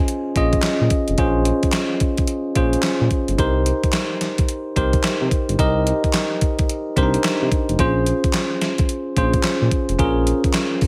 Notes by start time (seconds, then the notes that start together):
Already playing: C#4 F4 G#4 C5 D#5
0.08 closed hi-hat
0.36 A#1 C#4 F4 G#4 D#5, kick, closed hi-hat
0.53 kick, closed hi-hat
0.62 snare, clap, closed hi-hat
0.81 A#2
0.90 kick, closed hi-hat
1.08 F1, closed hi-hat
1.18 A#1 C#4 F4 G#4 C5, kick, closed hi-hat
1.45 closed hi-hat
1.63 kick, closed hi-hat
1.73 snare, clap, closed hi-hat
2.00 kick, closed hi-hat
2.17 kick, closed hi-hat
2.27 closed hi-hat
2.55 A#1 C#4 F4 G#4 C5, kick, closed hi-hat
2.73 closed hi-hat
2.83 snare, clap, closed hi-hat
3.01 A#2
3.11 kick, closed hi-hat
3.28 G1, closed hi-hat
3.38 C2 D#4 G4 A#4 C5, kick, closed hi-hat
3.66 closed hi-hat
3.83 kick, closed hi-hat
3.93 snare, clap, closed hi-hat
4.21 snare, closed hi-hat
4.38 kick, closed hi-hat
4.49 closed hi-hat
4.76 C2 D#4 G4 A#4 C5, kick, closed hi-hat
4.93 kick, closed hi-hat
5.04 snare, clap, closed hi-hat
5.21 C3
5.31 kick, closed hi-hat
5.48 G1, closed hi-hat
5.59 C2 D#4 G4 A#4 D#5, kick, closed hi-hat
5.87 closed hi-hat
6.04 kick, closed hi-hat
6.14 snare, clap, closed hi-hat
6.41 kick, closed hi-hat
6.59 kick, closed hi-hat
6.69 closed hi-hat
6.96 C2 D4 G4 A#4 C5, kick, closed hi-hat
7.03 D#4
7.14 closed hi-hat
7.24 snare, clap, closed hi-hat
7.42 C3
7.52 kick, closed hi-hat
7.69 F1, closed hi-hat
7.79 A#1 C#4 F4 G#4 C5, kick, closed hi-hat
8.06 closed hi-hat
8.24 kick, closed hi-hat
8.33 snare, clap, closed hi-hat
8.61 snare, closed hi-hat
8.78 kick, closed hi-hat
8.89 closed hi-hat
9.17 A#1 C#4 F4 G#4 C5, kick, closed hi-hat
9.33 kick, closed hi-hat
9.43 snare, clap, closed hi-hat
9.62 A#2
9.71 kick, closed hi-hat
9.89 F1, closed hi-hat
9.99 A#1 C#4 F4 G#4 A#4, kick, closed hi-hat
10.27 closed hi-hat
10.44 kick, closed hi-hat
10.54 snare, clap, closed hi-hat
10.81 kick, open hi-hat